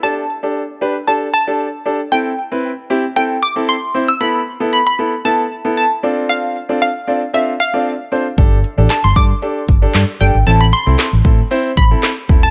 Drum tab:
HH |--------|--------|--------|--------|
CP |--------|--------|--------|--------|
SD |--------|--------|--------|--------|
BD |--------|--------|--------|--------|

HH |xxxxxxxx|xxxxxxxx|
CP |--x---x-|--x---x-|
SD |--o---o-|--o---o-|
BD |o--o-o--|---o-o-o|